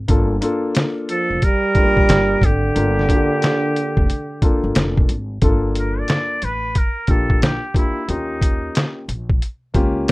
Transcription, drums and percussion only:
0.08 kick, closed hi-hat
0.42 closed hi-hat
0.75 snare, closed hi-hat
1.09 closed hi-hat
1.42 kick, closed hi-hat
1.75 kick, closed hi-hat
1.97 kick
2.09 snare, closed hi-hat
2.42 kick, closed hi-hat
2.76 closed hi-hat
2.99 snare
3.09 kick, closed hi-hat
3.42 snare, closed hi-hat
3.76 closed hi-hat
3.97 kick
4.10 closed hi-hat
4.42 kick, closed hi-hat
4.75 snare, closed hi-hat
4.97 kick
5.09 closed hi-hat
5.42 kick, closed hi-hat
5.75 closed hi-hat
6.08 snare, closed hi-hat
6.42 closed hi-hat
6.75 kick, closed hi-hat
7.07 kick, closed hi-hat
7.30 kick
7.42 snare, closed hi-hat
7.75 kick, closed hi-hat
8.09 closed hi-hat
8.42 kick, closed hi-hat
8.75 snare, closed hi-hat
9.09 closed hi-hat
9.30 kick
9.42 closed hi-hat
9.74 kick, closed hi-hat
10.08 closed hi-hat

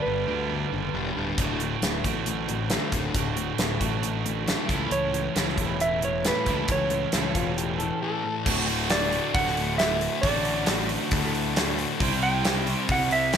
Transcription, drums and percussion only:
1.38 kick, closed hi-hat
1.60 closed hi-hat
1.82 snare, closed hi-hat
2.04 kick, closed hi-hat
2.26 closed hi-hat
2.49 closed hi-hat
2.70 snare, closed hi-hat
2.92 kick, closed hi-hat
3.14 kick, closed hi-hat
3.37 closed hi-hat
3.58 snare, closed hi-hat
3.81 kick, closed hi-hat
4.03 closed hi-hat
4.26 closed hi-hat
4.48 snare, closed hi-hat
4.69 kick, closed hi-hat
4.91 closed hi-hat
5.14 closed hi-hat
5.36 snare, closed hi-hat
5.48 snare
5.58 kick, closed hi-hat
5.80 closed hi-hat
6.02 closed hi-hat
6.25 snare, closed hi-hat
6.46 kick, closed hi-hat
6.68 kick, closed hi-hat
6.90 closed hi-hat
7.12 snare, closed hi-hat
7.35 kick, closed hi-hat
7.58 closed hi-hat
7.80 closed hi-hat
8.46 kick, crash
8.68 open hi-hat
8.90 snare, open hi-hat
9.12 open hi-hat
9.35 kick, open hi-hat
9.47 snare
9.57 open hi-hat
9.79 snare, open hi-hat
10.01 open hi-hat
10.23 kick, open hi-hat
10.45 open hi-hat
10.66 snare, open hi-hat
10.89 open hi-hat
11.11 kick, open hi-hat
11.35 open hi-hat
11.56 snare, open hi-hat
11.79 open hi-hat
12.00 kick, open hi-hat
12.22 open hi-hat
12.45 snare, open hi-hat
12.67 open hi-hat
12.89 kick, open hi-hat
13.11 open hi-hat
13.33 snare, open hi-hat

